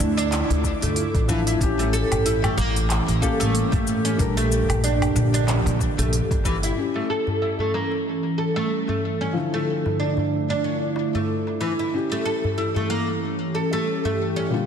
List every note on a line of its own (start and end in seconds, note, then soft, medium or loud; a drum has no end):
0.00 0.41 D2 loud
0.00 1.61 D3 medium
0.00 1.61 A3 medium
0.00 0.16 D4 medium
0.00 2.65 E4 loud
0.00 shaker medium
0.17 0.30 D4 loud
0.17 1.61 F4 medium
0.17 1.61 D6 medium
0.17 open hi-hat soft
0.17 darbuka ka medium
0.17 shaker soft
0.32 0.42 C#4 medium
0.32 clap medium
0.32 open hi-hat medium
0.32 shaker soft
0.50 0.70 D2 loud
0.50 open hi-hat soft
0.63 kick medium
0.63 darbuka ka medium
0.63 darbuka tek medium
0.63 shaker medium
0.82 1.03 D2 loud
0.82 0.96 A3 medium
0.82 open hi-hat soft
0.82 darbuka dum medium
0.82 shaker soft
0.96 open hi-hat medium
0.96 shaker soft
1.14 1.53 A1 medium
1.14 kick medium
1.14 open hi-hat soft
1.14 darbuka ka medium
1.14 darbuka tek medium
1.28 1.39 E3 loud
1.28 1.57 F3 medium
1.28 1.58 D4 medium
1.28 1.58 E4 loud
1.28 kick medium
1.28 darbuka ka soft
1.28 shaker medium
1.47 1.60 E4 medium
1.47 open hi-hat soft
1.47 shaker soft
1.61 2.02 A1 loud
1.61 3.19 C#4 medium
1.61 3.20 G4 loud
1.61 kick loud
1.61 open hi-hat medium
1.61 shaker soft
1.79 1.92 A3 loud
1.79 open hi-hat soft
1.79 darbuka tek soft
1.93 2.11 A4 loud
1.93 shaker medium
2.11 2.50 A1 medium
2.11 open hi-hat soft
2.11 darbuka ka medium
2.11 darbuka dum medium
2.11 low woodblock medium
2.11 shaker soft
2.18 4.19 E3 medium
2.18 10.23 G4 medium
2.26 2.36 E4 medium
2.26 open hi-hat medium
2.26 shaker soft
2.44 2.57 A3 medium
2.44 open hi-hat soft
2.44 darbuka dum medium
2.44 low woodblock medium
2.57 2.99 A1 loud
2.57 2.75 A#3 loud
2.57 shaker medium
2.75 4.19 C#4 medium
2.75 open hi-hat soft
2.75 darbuka ka medium
2.75 shaker soft
2.90 clap medium
2.90 open hi-hat medium
2.90 shaker soft
3.08 3.28 A1 medium
3.08 open hi-hat soft
3.21 3.31 A#3 medium
3.21 3.31 C#4 medium
3.21 3.32 G4 loud
3.21 3.39 A4 medium
3.21 kick medium
3.21 darbuka ka medium
3.21 shaker medium
3.40 3.61 A1 loud
3.40 3.53 A3 loud
3.40 open hi-hat soft
3.40 darbuka tek medium
3.40 shaker soft
3.55 open hi-hat medium
3.55 shaker soft
3.72 4.12 A2 medium
3.72 4.03 A3 medium
3.72 kick loud
3.72 open hi-hat soft
3.72 darbuka ka medium
3.72 darbuka tek medium
3.72 darbuka dum medium
3.87 shaker medium
4.05 4.19 C#4 medium
4.05 open hi-hat soft
4.05 darbuka ka medium
4.05 shaker soft
4.18 4.60 A#1 loud
4.18 6.77 A#2 medium
4.18 4.33 G3 medium
4.18 4.33 D4 medium
4.18 4.34 A#4 medium
4.18 kick loud
4.18 open hi-hat medium
4.18 shaker soft
4.37 4.50 A3 loud
4.37 open hi-hat soft
4.37 darbuka tek soft
4.52 shaker medium
4.68 5.08 A#1 medium
4.68 open hi-hat soft
4.68 darbuka ka medium
4.68 darbuka dum medium
4.68 low woodblock medium
4.68 shaker soft
4.82 6.77 F3 medium
4.82 5.32 D4 medium
4.82 open hi-hat medium
4.82 shaker soft
4.86 6.77 D3 medium
5.01 open hi-hat soft
5.01 darbuka dum medium
5.01 low woodblock medium
5.16 5.57 A#1 loud
5.16 shaker medium
5.34 5.47 D4 loud
5.34 open hi-hat soft
5.34 darbuka ka medium
5.34 shaker soft
5.48 5.58 C#4 medium
5.48 clap medium
5.48 open hi-hat medium
5.48 shaker soft
5.66 5.86 A#1 loud
5.66 open hi-hat soft
5.79 kick medium
5.79 darbuka ka medium
5.79 darbuka tek medium
5.79 shaker medium
5.98 6.19 A#1 loud
5.98 6.12 A3 medium
5.98 open hi-hat soft
5.98 darbuka dum medium
5.98 shaker soft
6.13 open hi-hat medium
6.13 shaker soft
6.31 6.70 G1 loud
6.31 kick medium
6.31 open hi-hat soft
6.31 darbuka ka medium
6.31 darbuka tek medium
6.44 6.55 E3 medium
6.44 kick medium
6.44 darbuka ka medium
6.44 shaker medium
6.63 6.77 E4 medium
6.63 open hi-hat soft
6.63 shaker soft
6.77 9.32 C#4 medium
6.77 9.32 E4 medium
6.77 9.33 G4 medium
6.96 7.08 A3 medium
6.96 darbuka tek soft
7.05 9.35 C#4 medium
7.10 7.27 A4 medium
7.21 9.35 E3 medium
7.27 darbuka ka medium
7.27 darbuka dum medium
7.42 7.52 E4 medium
7.59 7.73 A3 medium
7.59 darbuka dum medium
7.74 7.91 A#3 medium
7.92 darbuka ka medium
8.38 8.55 A4 medium
8.38 darbuka ka medium
8.56 8.70 A3 medium
8.56 darbuka tek medium
8.88 9.19 A3 medium
8.88 darbuka ka medium
8.88 darbuka tek soft
8.88 darbuka dum medium
9.21 9.35 C#4 medium
9.21 darbuka ka soft
9.33 11.90 D3 medium
9.33 11.93 D3 medium
9.33 11.89 F3 medium
9.33 11.91 E4 medium
9.53 9.67 A3 medium
9.53 darbuka tek soft
9.72 11.93 A3 medium
9.86 darbuka ka medium
9.86 darbuka dum medium
9.96 10.48 D4 medium
9.96 12.97 E4 medium
10.17 darbuka dum medium
10.49 10.63 D4 medium
10.49 darbuka ka medium
10.53 11.93 D6 medium
10.64 10.75 C#4 medium
10.96 darbuka ka medium
10.96 darbuka tek medium
11.15 11.28 A3 medium
11.15 darbuka dum medium
11.47 darbuka ka medium
11.47 darbuka tek soft
11.61 11.71 E3 medium
11.61 darbuka ka medium
11.79 11.93 E4 medium
11.93 14.48 C#4 medium
11.93 14.48 E4 medium
11.93 14.49 G4 medium
12.11 12.24 A3 medium
12.11 darbuka tek soft
12.18 14.51 E3 medium
12.25 12.43 A4 medium
12.44 darbuka ka soft
12.44 darbuka dum medium
12.58 12.68 E4 medium
12.76 12.89 A3 medium
12.76 darbuka dum medium
12.90 13.07 A#3 medium
13.06 14.51 C#4 medium
13.06 darbuka ka medium
13.11 14.66 G4 medium
13.54 13.71 A4 medium
13.54 darbuka ka medium
13.73 13.86 A3 medium
13.73 darbuka tek medium
14.05 14.36 A3 medium
14.05 darbuka ka medium
14.05 darbuka tek medium
14.05 darbuka dum medium
14.36 14.51 C#4 medium
14.36 darbuka ka soft
14.49 14.66 A#2 medium
14.49 14.66 D3 medium
14.49 14.66 G3 medium
14.54 14.66 F4 medium